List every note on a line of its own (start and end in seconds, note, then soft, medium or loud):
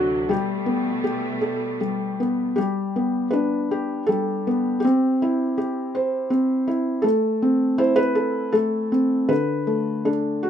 0.00 0.29 D2 medium
0.00 0.29 C3 medium
0.00 0.29 F#3 medium
0.00 0.28 D4 medium
0.00 0.29 F#4 medium
0.00 0.31 A4 medium
0.29 2.56 B2 medium
0.29 1.79 G3 medium
0.29 2.55 G3 medium
0.29 2.55 A3 medium
0.29 1.02 G4 medium
0.66 2.18 B3 medium
1.04 2.54 G4 medium
1.41 2.57 A4 medium
1.81 2.57 G3 medium
2.20 2.57 B3 medium
2.56 4.07 G3 medium
2.56 3.28 G4 medium
2.96 4.46 B3 medium
3.31 4.83 D4 medium
3.31 4.03 B4 medium
3.71 4.79 G4 medium
4.07 4.83 G3 medium
4.07 4.78 A4 medium
4.47 4.83 B3 medium
4.80 5.56 G4 medium
4.84 6.29 C4 medium
5.22 6.66 E4 medium
5.58 7.04 G4 medium
5.95 7.05 C5 medium
6.30 7.04 C4 medium
6.68 7.04 E4 medium
7.02 8.52 A3 medium
7.02 7.80 A4 medium
7.42 8.91 C4 medium
7.78 9.30 E4 medium
7.78 7.98 C5 medium
7.96 8.55 B4 loud
8.15 8.51 A4 medium
8.52 9.29 A3 medium
8.52 9.31 A4 medium
8.92 9.30 C4 medium
9.29 10.50 D3 medium
9.29 10.08 B4 medium
9.67 10.50 A3 medium
10.05 10.50 D4 medium
10.05 10.50 A4 medium
10.43 10.50 F#4 medium